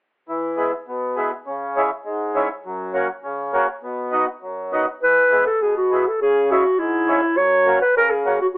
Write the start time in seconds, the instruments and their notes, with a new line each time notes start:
0.29 accordion E3
0.57 accordion G#3 B3 E4
0.88 accordion B2
1.16 accordion G#3 B3 E4
1.47 accordion C#3
1.76 accordion G#3 C#4 E4
2.05 accordion G#2
2.34 accordion G#3 C#4 E4
2.65 accordion F#2
2.94 accordion A#3 C#4 F#4
3.23 accordion C#3
3.53 accordion A#3 C#4 F#4
3.83 accordion B2
4.11 accordion B3 D#4 F#4
4.42 accordion F#2
4.72 accordion B3 D#4 F#4
5.03 accordion E3, clarinet B4
5.32 accordion G#3 B3 E4
5.46 clarinet A4
5.62 accordion B2, clarinet G#4
5.77 clarinet F#4
5.91 accordion G#3 B3 E4
6.08 clarinet A4
6.22 accordion C#3, clarinet G#4
6.50 accordion G#3 C#4 E4, clarinet F#4
6.79 accordion G#2, clarinet E4
7.07 accordion G#3 C#4 E4
7.36 accordion F#2, clarinet C#5
7.66 accordion A#3 C#4 F#4
7.81 clarinet B4
7.96 accordion C#3, clarinet A#4
8.10 clarinet G#4
8.25 accordion A#3 C#4 F#4
8.41 clarinet F#4